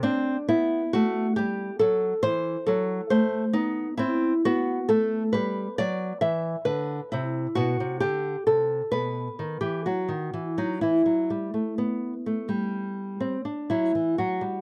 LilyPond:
\new Staff \with { instrumentName = "Nylon-string guitar" } { \time 4/4 \key e \minor \tempo 4 = 67 << { d'8 e'8 fis'8 g'8 a'8 c''8 a'8 c''8 | dis'8 e'8 fis'8 a'8 b'8 d''8 e''8 b'8 | e'8 fis'8 g'8 a'8 b'8. g'16 fis'8. dis'16 | e'2~ e'8 c'16 d'16 e'8 fis'8 | } \\ { c'8 b8 a8 g8 fis8 e8 fis8 a8 | b8 c'8 b8 a8 g8 fis8 e8 d8 | c8 b,16 c16 d8 c8 b,8 dis16 e16 fis16 dis16 e16 fis16 | e16 fis16 g16 a16 b8 a16 g4~ g16 fis16 e16 fis16 g16 | } >> }